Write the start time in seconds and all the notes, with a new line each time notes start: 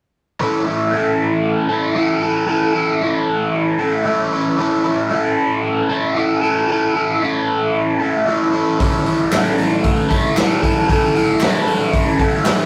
0.40 A2 E3 A3 C#4 E4 A4
0.64 C#4 E4 A4
0.69 A3
0.91 A3 C#4 E4
0.96 A4
1.69 C#4 E4 A4
1.73 A3
1.94 A2 E3 A3 C#4 E4
1.98 A4
2.21 C#4 E4 A4
2.25 A3
2.47 A2 E3 A3 C#4 E4
2.51 A4
2.73 A3 C#4 E4 A4
3.01 A3 C#4 E4
3.05 A4
3.79 C#4 E4 A4
3.83 A3
4.04 A2 E3 A3 C#4 E4
4.08 A4
4.32 A3 C#4 E4 A4
4.57 A2 E3 A3 C#4 E4 A4
4.84 A3 C#4 E4 A4
5.10 A3 C#4 E4
5.15 A4
5.89 C#4 E4 A4
5.93 A3
6.14 A2 E3 A3 C#4 E4
6.18 A4
6.41 C#4 E4 A4
6.45 A3
6.68 A2 E3 A3 C#4 E4 A4
6.94 C#4 E4 A4
6.98 A3
7.20 A3 C#4 E4
7.25 A4
7.99 C#4 E4 A4
8.03 A3
8.25 A2 E3 A3 C#4 E4
8.30 A4
8.52 A3 C#4 E4 A4
8.78 A2 E3 A3 C#4 E4, kick, open hi-hat
8.82 A4
9.04 A3 C#4 E4 A4, open hi-hat
9.31 A3 C#4 E4 A4, snare, clap, open hi-hat
9.58 open hi-hat
9.84 kick, open hi-hat
10.09 C#4 E4 A4, kick, open hi-hat
10.13 A3
10.36 A2 E3 A3 C#4 E4 A4, snare, clap, open hi-hat
10.62 C#4 E4 A4, kick, open hi-hat
10.66 A3
10.89 A2 E3 A3 C#4 E4, kick, open hi-hat
10.93 A4
11.14 C#4 E4 A4, open hi-hat
11.18 A3
11.40 A3 C#4 E4, snare, clap, open hi-hat
11.45 A4
11.68 open hi-hat
11.94 kick, open hi-hat
12.19 A3 C#4 E4 A4, kick, open hi-hat
12.45 A2 E3 A3 C#4 E4, snare, clap, open hi-hat
12.50 A4